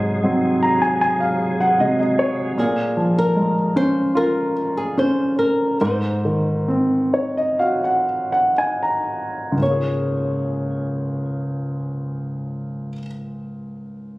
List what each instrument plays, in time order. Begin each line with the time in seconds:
Already playing: grand piano G#2, tonewheel organ C3 F#3 G#4, nylon-string guitar D#4
0.24 grand piano F#3 G#3 C4
0.63 grand piano A#5
0.82 grand piano G#5
1.01 grand piano G#5
1.20 grand piano F5
1.60 grand piano F#5
1.80 grand piano C3 F#3 G#3 D#5
1.99 grand piano D#5
2.19 grand piano C#5
2.58 grand piano A#2, nylon-string guitar G#4
2.97 grand piano F3
3.18 nylon-string guitar A#4
3.36 grand piano G#3
3.76 grand piano C#4, nylon-string guitar C5
4.15 grand piano F4, nylon-string guitar A#4
4.77 nylon-string guitar G#4
4.98 grand piano C#4, nylon-string guitar C5
5.39 nylon-string guitar A#4
5.81 grand piano G#2, nylon-string guitar C5
6.25 grand piano D#3
6.68 grand piano C4
7.13 grand piano D#4 C#5
7.37 grand piano D#5
7.59 grand piano F#4 F5
7.84 grand piano F#5
8.32 grand piano F#5
8.58 grand piano D#4 G#5
8.83 grand piano A#5
9.52 grand piano C#2 G#2
9.59 grand piano C#3 A#3, nylon-string guitar C#5
9.67 grand piano F4
9.71 grand piano G#4